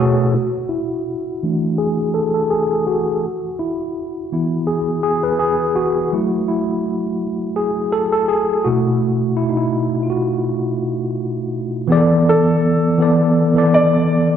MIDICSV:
0, 0, Header, 1, 3, 480
1, 0, Start_track
1, 0, Tempo, 722892
1, 231, Time_signature, 4, 2, 24, 8
1, 9540, End_track
2, 0, Start_track
2, 0, Title_t, "Upright piano"
2, 0, Program_c, 0, 0
2, 0, Note_on_c, 0, 69, 66
2, 211, Note_off_c, 0, 69, 0
2, 8162, Note_on_c, 0, 69, 71
2, 9090, Note_off_c, 0, 69, 0
2, 9125, Note_on_c, 0, 74, 69
2, 9469, Note_off_c, 0, 74, 0
2, 9540, End_track
3, 0, Start_track
3, 0, Title_t, "Tine electric piano"
3, 0, Program_c, 1, 4
3, 0, Control_c, 1, 64, 127
3, 0, Note_on_c, 1, 47, 71
3, 0, Note_on_c, 1, 57, 65
3, 0, Note_on_c, 1, 64, 66
3, 0, Note_on_c, 1, 66, 95
3, 0, Note_on_c, 1, 68, 105
3, 0, Note_on_c, 1, 71, 73
3, 0, Note_on_c, 1, 73, 78
3, 240, Control_c, 1, 64, 0
3, 242, Note_off_c, 1, 57, 0
3, 242, Note_off_c, 1, 68, 0
3, 244, Note_off_c, 1, 47, 0
3, 244, Note_off_c, 1, 71, 0
3, 245, Note_off_c, 1, 73, 0
3, 247, Note_off_c, 1, 64, 0
3, 364, Control_c, 1, 64, 127
3, 459, Note_on_c, 1, 64, 77
3, 482, Note_off_c, 1, 66, 0
3, 918, Note_off_c, 1, 64, 0
3, 949, Note_on_c, 1, 52, 48
3, 954, Note_on_c, 1, 57, 43
3, 958, Note_on_c, 1, 62, 47
3, 1183, Note_on_c, 1, 68, 93
3, 1422, Note_on_c, 1, 69, 95
3, 1434, Note_off_c, 1, 68, 0
3, 1547, Note_off_c, 1, 69, 0
3, 1555, Note_on_c, 1, 69, 90
3, 1643, Note_off_c, 1, 52, 0
3, 1646, Note_off_c, 1, 57, 0
3, 1648, Note_off_c, 1, 62, 0
3, 1662, Note_on_c, 1, 68, 91
3, 1670, Note_off_c, 1, 69, 0
3, 1904, Note_on_c, 1, 66, 86
3, 1914, Note_off_c, 1, 68, 0
3, 2159, Control_c, 1, 64, 0
3, 2267, Control_c, 1, 64, 127
3, 2386, Note_on_c, 1, 64, 74
3, 2402, Note_off_c, 1, 66, 0
3, 2842, Note_off_c, 1, 64, 0
3, 2870, Note_on_c, 1, 52, 44
3, 2874, Note_on_c, 1, 59, 41
3, 2879, Note_on_c, 1, 64, 51
3, 3101, Note_on_c, 1, 68, 79
3, 3329, Note_off_c, 1, 68, 0
3, 3340, Note_on_c, 1, 68, 92
3, 3475, Note_on_c, 1, 71, 87
3, 3483, Note_off_c, 1, 68, 0
3, 3564, Note_off_c, 1, 52, 0
3, 3566, Note_off_c, 1, 59, 0
3, 3568, Note_off_c, 1, 64, 0
3, 3580, Note_on_c, 1, 68, 97
3, 3590, Note_off_c, 1, 71, 0
3, 3822, Note_on_c, 1, 66, 93
3, 3833, Note_off_c, 1, 68, 0
3, 4067, Note_on_c, 1, 54, 52
3, 4071, Note_on_c, 1, 57, 45
3, 4077, Note_on_c, 1, 64, 60
3, 4080, Control_c, 1, 64, 0
3, 4200, Control_c, 1, 64, 127
3, 4296, Note_off_c, 1, 64, 0
3, 4304, Note_on_c, 1, 64, 74
3, 4321, Note_off_c, 1, 66, 0
3, 4761, Note_off_c, 1, 64, 0
3, 4763, Note_off_c, 1, 54, 0
3, 4765, Note_off_c, 1, 57, 0
3, 5021, Note_on_c, 1, 68, 88
3, 5262, Note_on_c, 1, 69, 100
3, 5274, Note_off_c, 1, 68, 0
3, 5387, Note_off_c, 1, 69, 0
3, 5395, Note_on_c, 1, 69, 88
3, 5499, Note_off_c, 1, 69, 0
3, 5500, Note_on_c, 1, 68, 88
3, 5740, Note_on_c, 1, 66, 86
3, 5746, Note_on_c, 1, 47, 52
3, 5751, Note_on_c, 1, 57, 46
3, 5753, Note_off_c, 1, 68, 0
3, 5755, Note_on_c, 1, 64, 58
3, 5761, Control_c, 1, 64, 0
3, 5874, Control_c, 1, 64, 127
3, 6078, Note_off_c, 1, 47, 0
3, 6080, Note_off_c, 1, 57, 0
3, 6083, Note_off_c, 1, 64, 0
3, 6220, Note_on_c, 1, 64, 82
3, 6240, Note_off_c, 1, 66, 0
3, 6301, Note_off_c, 1, 64, 0
3, 6304, Note_on_c, 1, 63, 62
3, 6356, Note_on_c, 1, 64, 77
3, 6360, Note_off_c, 1, 63, 0
3, 6660, Note_on_c, 1, 65, 56
3, 6675, Note_off_c, 1, 64, 0
3, 6705, Note_on_c, 1, 66, 69
3, 6706, Note_off_c, 1, 65, 0
3, 7642, Note_off_c, 1, 66, 0
3, 7885, Note_on_c, 1, 52, 93
3, 7895, Note_on_c, 1, 59, 83
3, 7904, Note_on_c, 1, 68, 62
3, 7915, Note_on_c, 1, 74, 100
3, 7920, Control_c, 1, 64, 0
3, 7948, Note_on_c, 1, 69, 72
3, 7956, Note_off_c, 1, 68, 0
3, 8033, Control_c, 1, 64, 127
3, 8351, Note_off_c, 1, 52, 0
3, 8357, Note_off_c, 1, 59, 0
3, 8366, Note_off_c, 1, 74, 0
3, 8383, Note_off_c, 1, 69, 0
3, 8619, Note_on_c, 1, 52, 68
3, 8627, Note_on_c, 1, 59, 68
3, 8638, Note_on_c, 1, 69, 65
3, 8647, Note_on_c, 1, 74, 71
3, 8852, Note_off_c, 1, 52, 0
3, 8856, Note_off_c, 1, 59, 0
3, 8861, Note_off_c, 1, 69, 0
3, 8866, Note_off_c, 1, 74, 0
3, 8989, Note_on_c, 1, 52, 70
3, 9000, Note_on_c, 1, 59, 61
3, 9009, Note_on_c, 1, 69, 72
3, 9019, Note_on_c, 1, 74, 83
3, 9517, Note_off_c, 1, 52, 0
3, 9522, Note_off_c, 1, 59, 0
3, 9527, Note_off_c, 1, 69, 0
3, 9532, Note_off_c, 1, 74, 0
3, 9540, End_track
0, 0, End_of_file